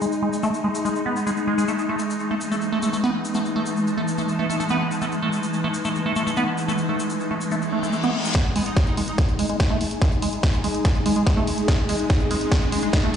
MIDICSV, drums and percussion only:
0, 0, Header, 1, 2, 480
1, 0, Start_track
1, 0, Tempo, 416667
1, 18, Time_signature, 4, 2, 24, 8
1, 15165, End_track
2, 0, Start_track
2, 0, Title_t, "Drums"
2, 19, Note_on_c, 9, 82, 61
2, 134, Note_off_c, 9, 82, 0
2, 139, Note_on_c, 9, 82, 42
2, 254, Note_off_c, 9, 82, 0
2, 380, Note_on_c, 9, 82, 68
2, 495, Note_off_c, 9, 82, 0
2, 496, Note_on_c, 9, 82, 69
2, 611, Note_off_c, 9, 82, 0
2, 622, Note_on_c, 9, 82, 42
2, 737, Note_off_c, 9, 82, 0
2, 861, Note_on_c, 9, 82, 78
2, 976, Note_off_c, 9, 82, 0
2, 982, Note_on_c, 9, 82, 68
2, 1098, Note_off_c, 9, 82, 0
2, 1103, Note_on_c, 9, 82, 41
2, 1218, Note_off_c, 9, 82, 0
2, 1339, Note_on_c, 9, 82, 78
2, 1455, Note_off_c, 9, 82, 0
2, 1461, Note_on_c, 9, 82, 71
2, 1576, Note_off_c, 9, 82, 0
2, 1576, Note_on_c, 9, 82, 36
2, 1691, Note_off_c, 9, 82, 0
2, 1824, Note_on_c, 9, 82, 74
2, 1933, Note_off_c, 9, 82, 0
2, 1933, Note_on_c, 9, 82, 67
2, 2048, Note_off_c, 9, 82, 0
2, 2060, Note_on_c, 9, 82, 40
2, 2175, Note_off_c, 9, 82, 0
2, 2291, Note_on_c, 9, 82, 67
2, 2406, Note_off_c, 9, 82, 0
2, 2419, Note_on_c, 9, 82, 63
2, 2530, Note_off_c, 9, 82, 0
2, 2530, Note_on_c, 9, 82, 37
2, 2645, Note_off_c, 9, 82, 0
2, 2773, Note_on_c, 9, 82, 77
2, 2889, Note_off_c, 9, 82, 0
2, 2900, Note_on_c, 9, 82, 59
2, 3010, Note_off_c, 9, 82, 0
2, 3010, Note_on_c, 9, 82, 36
2, 3125, Note_off_c, 9, 82, 0
2, 3252, Note_on_c, 9, 82, 77
2, 3368, Note_off_c, 9, 82, 0
2, 3375, Note_on_c, 9, 82, 61
2, 3490, Note_off_c, 9, 82, 0
2, 3502, Note_on_c, 9, 82, 33
2, 3617, Note_off_c, 9, 82, 0
2, 3741, Note_on_c, 9, 82, 76
2, 3851, Note_off_c, 9, 82, 0
2, 3851, Note_on_c, 9, 82, 64
2, 3967, Note_off_c, 9, 82, 0
2, 3979, Note_on_c, 9, 82, 36
2, 4095, Note_off_c, 9, 82, 0
2, 4213, Note_on_c, 9, 82, 73
2, 4328, Note_off_c, 9, 82, 0
2, 4340, Note_on_c, 9, 82, 59
2, 4455, Note_off_c, 9, 82, 0
2, 4458, Note_on_c, 9, 82, 36
2, 4574, Note_off_c, 9, 82, 0
2, 4696, Note_on_c, 9, 82, 72
2, 4811, Note_off_c, 9, 82, 0
2, 4813, Note_on_c, 9, 82, 60
2, 4928, Note_off_c, 9, 82, 0
2, 4937, Note_on_c, 9, 82, 41
2, 5052, Note_off_c, 9, 82, 0
2, 5188, Note_on_c, 9, 82, 79
2, 5302, Note_off_c, 9, 82, 0
2, 5302, Note_on_c, 9, 82, 66
2, 5403, Note_off_c, 9, 82, 0
2, 5403, Note_on_c, 9, 82, 40
2, 5518, Note_off_c, 9, 82, 0
2, 5660, Note_on_c, 9, 82, 81
2, 5775, Note_off_c, 9, 82, 0
2, 5776, Note_on_c, 9, 82, 58
2, 5891, Note_off_c, 9, 82, 0
2, 5898, Note_on_c, 9, 82, 36
2, 6013, Note_off_c, 9, 82, 0
2, 6136, Note_on_c, 9, 82, 72
2, 6251, Note_off_c, 9, 82, 0
2, 6256, Note_on_c, 9, 82, 63
2, 6371, Note_off_c, 9, 82, 0
2, 6373, Note_on_c, 9, 82, 41
2, 6489, Note_off_c, 9, 82, 0
2, 6611, Note_on_c, 9, 82, 73
2, 6726, Note_off_c, 9, 82, 0
2, 6734, Note_on_c, 9, 82, 56
2, 6849, Note_off_c, 9, 82, 0
2, 6860, Note_on_c, 9, 82, 35
2, 6975, Note_off_c, 9, 82, 0
2, 7094, Note_on_c, 9, 82, 73
2, 7209, Note_off_c, 9, 82, 0
2, 7225, Note_on_c, 9, 82, 62
2, 7331, Note_off_c, 9, 82, 0
2, 7331, Note_on_c, 9, 82, 37
2, 7447, Note_off_c, 9, 82, 0
2, 7576, Note_on_c, 9, 82, 78
2, 7691, Note_off_c, 9, 82, 0
2, 7703, Note_on_c, 9, 82, 59
2, 7810, Note_off_c, 9, 82, 0
2, 7810, Note_on_c, 9, 82, 41
2, 7925, Note_off_c, 9, 82, 0
2, 8057, Note_on_c, 9, 82, 79
2, 8173, Note_off_c, 9, 82, 0
2, 8177, Note_on_c, 9, 82, 70
2, 8292, Note_off_c, 9, 82, 0
2, 8297, Note_on_c, 9, 82, 40
2, 8412, Note_off_c, 9, 82, 0
2, 8534, Note_on_c, 9, 82, 78
2, 8650, Note_off_c, 9, 82, 0
2, 8654, Note_on_c, 9, 82, 61
2, 8769, Note_off_c, 9, 82, 0
2, 8778, Note_on_c, 9, 82, 34
2, 8893, Note_off_c, 9, 82, 0
2, 9025, Note_on_c, 9, 82, 73
2, 9131, Note_off_c, 9, 82, 0
2, 9131, Note_on_c, 9, 82, 58
2, 9246, Note_off_c, 9, 82, 0
2, 9252, Note_on_c, 9, 82, 35
2, 9367, Note_off_c, 9, 82, 0
2, 9502, Note_on_c, 9, 82, 78
2, 9618, Note_off_c, 9, 82, 0
2, 9618, Note_on_c, 9, 36, 109
2, 9618, Note_on_c, 9, 38, 49
2, 9618, Note_on_c, 9, 42, 81
2, 9733, Note_off_c, 9, 36, 0
2, 9733, Note_off_c, 9, 38, 0
2, 9733, Note_off_c, 9, 42, 0
2, 9858, Note_on_c, 9, 46, 98
2, 9973, Note_off_c, 9, 46, 0
2, 9978, Note_on_c, 9, 42, 53
2, 10093, Note_off_c, 9, 42, 0
2, 10098, Note_on_c, 9, 36, 120
2, 10098, Note_on_c, 9, 38, 49
2, 10098, Note_on_c, 9, 42, 82
2, 10213, Note_off_c, 9, 36, 0
2, 10213, Note_off_c, 9, 38, 0
2, 10213, Note_off_c, 9, 42, 0
2, 10218, Note_on_c, 9, 42, 39
2, 10333, Note_off_c, 9, 42, 0
2, 10338, Note_on_c, 9, 46, 90
2, 10453, Note_off_c, 9, 46, 0
2, 10458, Note_on_c, 9, 42, 53
2, 10573, Note_off_c, 9, 42, 0
2, 10578, Note_on_c, 9, 36, 116
2, 10578, Note_on_c, 9, 38, 49
2, 10578, Note_on_c, 9, 42, 77
2, 10693, Note_off_c, 9, 36, 0
2, 10693, Note_off_c, 9, 38, 0
2, 10693, Note_off_c, 9, 42, 0
2, 10698, Note_on_c, 9, 42, 38
2, 10813, Note_off_c, 9, 42, 0
2, 10818, Note_on_c, 9, 46, 103
2, 10933, Note_off_c, 9, 46, 0
2, 10938, Note_on_c, 9, 42, 55
2, 11053, Note_off_c, 9, 42, 0
2, 11058, Note_on_c, 9, 36, 111
2, 11058, Note_on_c, 9, 38, 53
2, 11058, Note_on_c, 9, 42, 83
2, 11173, Note_off_c, 9, 36, 0
2, 11173, Note_off_c, 9, 38, 0
2, 11173, Note_off_c, 9, 42, 0
2, 11298, Note_on_c, 9, 46, 89
2, 11413, Note_off_c, 9, 46, 0
2, 11418, Note_on_c, 9, 42, 55
2, 11533, Note_off_c, 9, 42, 0
2, 11538, Note_on_c, 9, 36, 113
2, 11538, Note_on_c, 9, 38, 52
2, 11538, Note_on_c, 9, 42, 80
2, 11653, Note_off_c, 9, 36, 0
2, 11653, Note_off_c, 9, 38, 0
2, 11653, Note_off_c, 9, 42, 0
2, 11658, Note_on_c, 9, 42, 36
2, 11773, Note_off_c, 9, 42, 0
2, 11778, Note_on_c, 9, 46, 108
2, 11893, Note_off_c, 9, 46, 0
2, 11898, Note_on_c, 9, 42, 53
2, 12013, Note_off_c, 9, 42, 0
2, 12018, Note_on_c, 9, 36, 120
2, 12018, Note_on_c, 9, 38, 55
2, 12018, Note_on_c, 9, 42, 78
2, 12133, Note_off_c, 9, 36, 0
2, 12134, Note_off_c, 9, 38, 0
2, 12134, Note_off_c, 9, 42, 0
2, 12139, Note_on_c, 9, 42, 38
2, 12254, Note_off_c, 9, 42, 0
2, 12258, Note_on_c, 9, 46, 93
2, 12374, Note_off_c, 9, 46, 0
2, 12378, Note_on_c, 9, 42, 53
2, 12494, Note_off_c, 9, 42, 0
2, 12498, Note_on_c, 9, 36, 117
2, 12498, Note_on_c, 9, 38, 53
2, 12498, Note_on_c, 9, 42, 80
2, 12613, Note_off_c, 9, 36, 0
2, 12614, Note_off_c, 9, 38, 0
2, 12614, Note_off_c, 9, 42, 0
2, 12619, Note_on_c, 9, 42, 36
2, 12734, Note_off_c, 9, 42, 0
2, 12739, Note_on_c, 9, 46, 113
2, 12854, Note_off_c, 9, 46, 0
2, 12859, Note_on_c, 9, 42, 51
2, 12974, Note_off_c, 9, 42, 0
2, 12978, Note_on_c, 9, 36, 121
2, 12979, Note_on_c, 9, 38, 61
2, 12979, Note_on_c, 9, 42, 80
2, 13093, Note_off_c, 9, 36, 0
2, 13094, Note_off_c, 9, 38, 0
2, 13094, Note_off_c, 9, 42, 0
2, 13218, Note_on_c, 9, 46, 93
2, 13333, Note_off_c, 9, 46, 0
2, 13338, Note_on_c, 9, 42, 57
2, 13454, Note_off_c, 9, 42, 0
2, 13458, Note_on_c, 9, 36, 118
2, 13458, Note_on_c, 9, 38, 60
2, 13458, Note_on_c, 9, 42, 74
2, 13573, Note_off_c, 9, 36, 0
2, 13573, Note_off_c, 9, 38, 0
2, 13573, Note_off_c, 9, 42, 0
2, 13698, Note_on_c, 9, 46, 104
2, 13813, Note_off_c, 9, 46, 0
2, 13818, Note_on_c, 9, 42, 51
2, 13933, Note_off_c, 9, 42, 0
2, 13938, Note_on_c, 9, 36, 125
2, 13938, Note_on_c, 9, 38, 61
2, 13938, Note_on_c, 9, 42, 80
2, 14053, Note_off_c, 9, 36, 0
2, 14053, Note_off_c, 9, 38, 0
2, 14053, Note_off_c, 9, 42, 0
2, 14058, Note_on_c, 9, 42, 36
2, 14174, Note_off_c, 9, 42, 0
2, 14178, Note_on_c, 9, 46, 100
2, 14293, Note_off_c, 9, 46, 0
2, 14298, Note_on_c, 9, 42, 52
2, 14413, Note_off_c, 9, 42, 0
2, 14418, Note_on_c, 9, 36, 120
2, 14418, Note_on_c, 9, 38, 63
2, 14418, Note_on_c, 9, 42, 77
2, 14533, Note_off_c, 9, 36, 0
2, 14534, Note_off_c, 9, 38, 0
2, 14534, Note_off_c, 9, 42, 0
2, 14538, Note_on_c, 9, 42, 34
2, 14653, Note_off_c, 9, 42, 0
2, 14658, Note_on_c, 9, 46, 113
2, 14773, Note_off_c, 9, 46, 0
2, 14778, Note_on_c, 9, 42, 52
2, 14893, Note_off_c, 9, 42, 0
2, 14898, Note_on_c, 9, 36, 122
2, 14898, Note_on_c, 9, 38, 69
2, 14898, Note_on_c, 9, 42, 80
2, 15013, Note_off_c, 9, 36, 0
2, 15013, Note_off_c, 9, 38, 0
2, 15013, Note_off_c, 9, 42, 0
2, 15165, End_track
0, 0, End_of_file